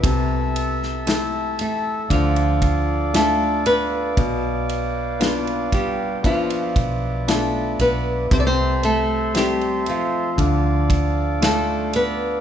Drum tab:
RD |x-x-x-x-xxx-x-x-|x-x-xxx-xxx-x-x-|x-x-xxx-x-x-x-x-|
SD |---oo-------o---|----o-------o---|----o-------o---|
BD |o-------o-o-----|o-----o-o-o-----|o-------o-o-----|